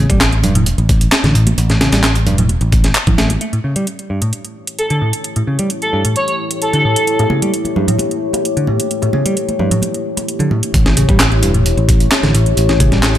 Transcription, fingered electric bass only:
0, 0, Header, 1, 2, 480
1, 0, Start_track
1, 0, Tempo, 458015
1, 1656, Time_signature, 4, 2, 24, 8
1, 13815, End_track
2, 0, Start_track
2, 0, Title_t, "Fingered electric bass"
2, 0, Program_c, 0, 33
2, 101, Note_on_c, 0, 33, 105
2, 456, Note_off_c, 0, 33, 0
2, 456, Note_on_c, 0, 28, 102
2, 763, Note_off_c, 0, 28, 0
2, 819, Note_on_c, 0, 33, 99
2, 1123, Note_off_c, 0, 33, 0
2, 1297, Note_on_c, 0, 33, 99
2, 1602, Note_off_c, 0, 33, 0
2, 1654, Note_on_c, 0, 33, 98
2, 1962, Note_off_c, 0, 33, 0
2, 2016, Note_on_c, 0, 33, 107
2, 2375, Note_off_c, 0, 33, 0
2, 2375, Note_on_c, 0, 28, 101
2, 2683, Note_off_c, 0, 28, 0
2, 2735, Note_on_c, 0, 33, 100
2, 3041, Note_off_c, 0, 33, 0
2, 3219, Note_on_c, 0, 33, 99
2, 3523, Note_off_c, 0, 33, 0
2, 11257, Note_on_c, 0, 33, 97
2, 11564, Note_off_c, 0, 33, 0
2, 11619, Note_on_c, 0, 33, 111
2, 11974, Note_off_c, 0, 33, 0
2, 11974, Note_on_c, 0, 28, 103
2, 12282, Note_off_c, 0, 28, 0
2, 12337, Note_on_c, 0, 33, 100
2, 12642, Note_off_c, 0, 33, 0
2, 12819, Note_on_c, 0, 33, 102
2, 13123, Note_off_c, 0, 33, 0
2, 13176, Note_on_c, 0, 33, 99
2, 13483, Note_off_c, 0, 33, 0
2, 13540, Note_on_c, 0, 33, 108
2, 13815, Note_off_c, 0, 33, 0
2, 13815, End_track
0, 0, End_of_file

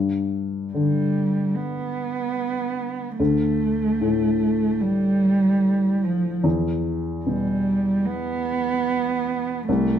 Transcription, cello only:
0, 0, Header, 1, 2, 480
1, 0, Start_track
1, 0, Tempo, 819672
1, 1868, Tempo, 810811
1, 1869, Time_signature, 4, 2, 24, 8
1, 5895, End_track
2, 0, Start_track
2, 0, Title_t, "Cello"
2, 0, Program_c, 0, 42
2, 429, Note_on_c, 0, 55, 47
2, 911, Note_on_c, 0, 59, 60
2, 919, Note_off_c, 0, 55, 0
2, 1861, Note_off_c, 0, 59, 0
2, 1865, Note_on_c, 0, 57, 63
2, 2827, Note_on_c, 0, 55, 66
2, 2836, Note_off_c, 0, 57, 0
2, 3553, Note_on_c, 0, 53, 54
2, 3562, Note_off_c, 0, 55, 0
2, 3795, Note_off_c, 0, 53, 0
2, 4272, Note_on_c, 0, 55, 57
2, 4750, Note_on_c, 0, 59, 77
2, 4759, Note_off_c, 0, 55, 0
2, 5707, Note_off_c, 0, 59, 0
2, 5709, Note_on_c, 0, 57, 76
2, 5895, Note_off_c, 0, 57, 0
2, 5895, End_track
0, 0, End_of_file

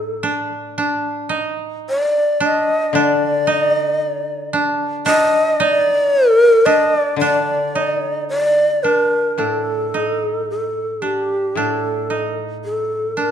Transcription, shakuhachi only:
0, 0, Header, 1, 2, 480
1, 0, Start_track
1, 0, Tempo, 1077199
1, 351, Time_signature, 2, 2, 24, 8
1, 1313, Tempo, 1060071
1, 3233, Tempo, 1096892
1, 4673, Tempo, 1073345
1, 5941, End_track
2, 0, Start_track
2, 0, Title_t, "Shakuhachi"
2, 0, Program_c, 0, 77
2, 0, Note_on_c, 0, 69, 97
2, 96, Note_off_c, 0, 69, 0
2, 844, Note_on_c, 0, 74, 96
2, 1092, Note_on_c, 0, 75, 94
2, 1099, Note_off_c, 0, 74, 0
2, 1325, Note_on_c, 0, 74, 89
2, 1332, Note_off_c, 0, 75, 0
2, 1583, Note_off_c, 0, 74, 0
2, 1583, Note_on_c, 0, 75, 89
2, 1637, Note_off_c, 0, 75, 0
2, 1637, Note_on_c, 0, 74, 89
2, 2034, Note_off_c, 0, 74, 0
2, 2271, Note_on_c, 0, 75, 113
2, 2517, Note_on_c, 0, 74, 122
2, 2524, Note_off_c, 0, 75, 0
2, 2838, Note_off_c, 0, 74, 0
2, 2838, Note_on_c, 0, 70, 122
2, 2993, Note_on_c, 0, 75, 103
2, 3000, Note_off_c, 0, 70, 0
2, 3133, Note_off_c, 0, 75, 0
2, 3133, Note_on_c, 0, 74, 103
2, 3235, Note_off_c, 0, 74, 0
2, 3237, Note_on_c, 0, 74, 81
2, 3695, Note_off_c, 0, 74, 0
2, 3716, Note_on_c, 0, 74, 97
2, 3954, Note_on_c, 0, 70, 82
2, 3960, Note_off_c, 0, 74, 0
2, 4198, Note_on_c, 0, 69, 67
2, 4204, Note_off_c, 0, 70, 0
2, 4675, Note_off_c, 0, 69, 0
2, 4686, Note_on_c, 0, 69, 64
2, 4916, Note_on_c, 0, 67, 67
2, 4923, Note_off_c, 0, 69, 0
2, 5159, Note_on_c, 0, 69, 63
2, 5166, Note_off_c, 0, 67, 0
2, 5521, Note_off_c, 0, 69, 0
2, 5644, Note_on_c, 0, 69, 68
2, 5876, Note_on_c, 0, 70, 72
2, 5883, Note_off_c, 0, 69, 0
2, 5941, Note_off_c, 0, 70, 0
2, 5941, End_track
0, 0, End_of_file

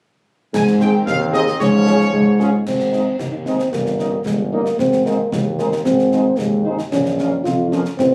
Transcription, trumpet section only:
0, 0, Header, 1, 2, 480
1, 0, Start_track
1, 0, Key_signature, -4, "major"
1, 0, Tempo, 531444
1, 490, Time_signature, 2, 2, 24, 8
1, 7357, End_track
2, 0, Start_track
2, 0, Title_t, "Trumpet section"
2, 0, Program_c, 0, 61
2, 482, Note_on_c, 0, 80, 98
2, 592, Note_off_c, 0, 80, 0
2, 722, Note_on_c, 0, 79, 92
2, 832, Note_off_c, 0, 79, 0
2, 956, Note_on_c, 0, 77, 115
2, 1067, Note_off_c, 0, 77, 0
2, 1197, Note_on_c, 0, 75, 104
2, 1426, Note_off_c, 0, 75, 0
2, 1434, Note_on_c, 0, 73, 119
2, 2365, Note_off_c, 0, 73, 0
2, 2645, Note_on_c, 0, 75, 45
2, 2732, Note_off_c, 0, 75, 0
2, 3128, Note_on_c, 0, 75, 44
2, 3214, Note_off_c, 0, 75, 0
2, 3605, Note_on_c, 0, 75, 50
2, 3692, Note_off_c, 0, 75, 0
2, 4079, Note_on_c, 0, 75, 46
2, 4167, Note_off_c, 0, 75, 0
2, 4566, Note_on_c, 0, 72, 47
2, 4653, Note_off_c, 0, 72, 0
2, 5045, Note_on_c, 0, 72, 40
2, 5132, Note_off_c, 0, 72, 0
2, 5533, Note_on_c, 0, 72, 51
2, 5619, Note_off_c, 0, 72, 0
2, 6005, Note_on_c, 0, 72, 46
2, 6093, Note_off_c, 0, 72, 0
2, 6495, Note_on_c, 0, 77, 52
2, 6580, Note_off_c, 0, 77, 0
2, 6971, Note_on_c, 0, 77, 50
2, 7057, Note_off_c, 0, 77, 0
2, 7357, End_track
0, 0, End_of_file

